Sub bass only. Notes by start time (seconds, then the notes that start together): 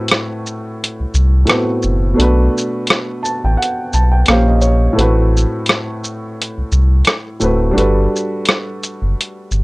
1.00 C2
1.14 C2
1.84 F#1
2.19 B1
3.44 A1
3.93 B1
4.28 A#1
4.98 A1
6.58 C2
6.72 C2
7.42 D1
7.77 G1
9.02 F#1
9.51 G1